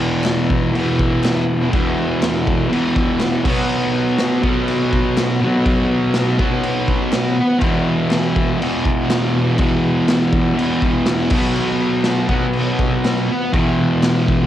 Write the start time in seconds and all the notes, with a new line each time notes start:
Already playing: E2 B2 E3
0.24 snare, clap, crash
0.50 kick
0.74 E2 B2, crash
0.79 E3
0.99 kick
1.24 snare, clap, crash
1.71 E2 B2, kick, crash
1.76 E3
2.23 snare, clap, crash
2.47 kick
2.69 E2 B2, crash
2.75 E3
2.96 kick
3.20 snare, clap, crash
3.44 B2 F#3, kick, crash
3.49 B3
3.69 crash
4.18 snare, clap, crash
4.43 F#3 B3, kick
4.48 B2
4.68 crash
4.93 kick
5.17 snare, clap, crash
5.41 B2 F#3
5.46 B3
5.66 kick, crash
6.14 snare, clap, crash
6.38 F#3 B3, kick
6.44 B2
6.63 crash
6.88 kick
7.13 snare, clap, crash
7.59 E2 B2, kick, crash
7.64 E3
8.11 snare, clap, crash
8.36 kick
8.58 E2 B2, crash
8.63 E3
8.85 kick
9.10 snare, clap, crash
9.58 E2 B2, kick, crash
9.62 E3
10.09 snare, clap, crash
10.33 kick
10.54 E2 B2
10.59 E3, crash
10.82 kick
11.06 snare, clap, crash
11.30 B2 F#3, kick, crash
11.36 B3
11.56 crash
12.04 snare, clap, crash
12.29 F#3 B3, kick
12.34 B2
12.53 crash
12.79 kick
13.05 snare, clap, crash
13.53 E2 B2, kick, crash
13.57 E3
14.03 snare, clap, crash
14.28 kick